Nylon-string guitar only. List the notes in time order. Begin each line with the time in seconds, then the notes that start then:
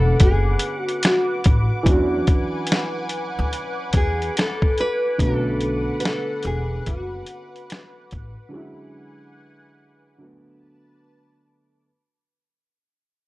Already playing: A4
0.23 G#4
0.84 F#4
1.06 F#4
3.97 G#4
4.38 A4
4.80 B4
5.23 A4
6.00 B4
6.05 A4
6.47 G#4
6.88 F#4